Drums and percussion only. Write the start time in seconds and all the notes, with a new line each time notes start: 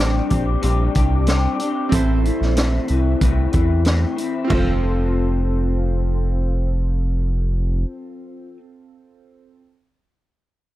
0.30 kick, closed hi-hat
0.63 closed hi-hat
0.95 kick, closed hi-hat
1.27 snare, closed hi-hat
1.59 closed hi-hat
1.92 kick, closed hi-hat
2.25 closed hi-hat
2.42 snare
2.57 snare, closed hi-hat
2.88 closed hi-hat
3.21 kick, closed hi-hat
3.53 kick, closed hi-hat
3.85 snare, closed hi-hat
4.18 closed hi-hat
4.50 kick, floor tom, china